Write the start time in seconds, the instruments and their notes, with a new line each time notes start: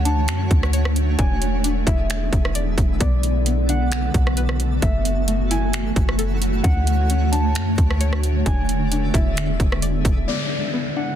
Already playing: 808-style bass D2, ambient pad D3 A3 F#4 C#5, synth pluck C#4, synth texture D4 C#5 F#5, harp F#5
0.05 synth pluck D4, harp A5, closed hi-hat
0.28 808-style bass F#2, finger snap, closed hi-hat
0.51 808-style bass D2, kick, closed hi-hat
0.63 cross-stick
0.73 synth pluck C#5, closed hi-hat
0.85 cross-stick
0.96 closed hi-hat
1.18 808-style bass E1, ambient pad D3 G#3 B3 E4, synth pluck D4, synth texture G#4 E5, harp G#5, kick, closed hi-hat
1.42 closed hi-hat
1.64 synth pluck D4, closed hi-hat
1.87 808-style bass E1, synth pluck E4, harp E5, kick, closed hi-hat
2.10 finger snap, closed hi-hat
2.33 808-style bass E1, kick, closed hi-hat
2.45 cross-stick
2.55 synth pluck D5, closed hi-hat
2.78 808-style bass E1, kick, closed hi-hat
3.00 808-style bass B1, ambient pad A3 B3 F#4, synth texture B3 A4 D5, synth pluck B3, harp D5, kick, closed hi-hat
3.23 closed hi-hat
3.46 synth pluck B3, closed hi-hat
3.69 synth pluck D4, harp F#5, closed hi-hat
3.92 finger snap, closed hi-hat
4.14 808-style bass B1, kick, closed hi-hat
4.27 cross-stick
4.37 synth pluck B4, closed hi-hat
4.49 cross-stick
4.60 closed hi-hat
4.82 808-style bass F#1, ambient pad E3 C#5, synth pluck A3, synth texture E4 F#5, harp E5, kick, closed hi-hat
5.05 closed hi-hat
5.27 synth pluck A3, closed hi-hat
5.51 synth pluck E4, harp G#5, closed hi-hat
5.73 finger snap, closed hi-hat
5.96 808-style bass F#1, kick, closed hi-hat
6.09 cross-stick
6.18 synth pluck A4, closed hi-hat
6.42 closed hi-hat
6.64 808-style bass D2, ambient pad D3, synth pluck C#4, synth texture D4 C#5, harp F#5, kick, closed hi-hat
6.87 closed hi-hat
7.10 synth pluck C#4, closed hi-hat
7.32 synth pluck D4, harp A5, closed hi-hat
7.55 808-style bass F#2, finger snap, closed hi-hat
7.78 808-style bass D2, kick, closed hi-hat
7.91 cross-stick
8.01 synth pluck C#5, closed hi-hat
8.13 cross-stick
8.23 closed hi-hat
8.46 808-style bass E1, ambient pad G#3 B3 E4, synth pluck D4, synth texture G#4 E5, harp G#5, kick, closed hi-hat
8.69 closed hi-hat
8.92 synth pluck D4, closed hi-hat
9.14 808-style bass E1, synth pluck E4, harp E5, kick, closed hi-hat
9.37 finger snap, closed hi-hat
9.60 808-style bass E1, kick, closed hi-hat
9.72 cross-stick
9.82 synth pluck D5, closed hi-hat
10.05 808-style bass E1, kick, closed hi-hat
10.28 ambient pad D3 A3 B3 F#4, synth texture B3 A4 D5, synth pluck B3, harp D5, downlifter
10.73 synth pluck B3
10.96 synth pluck D4, harp F#5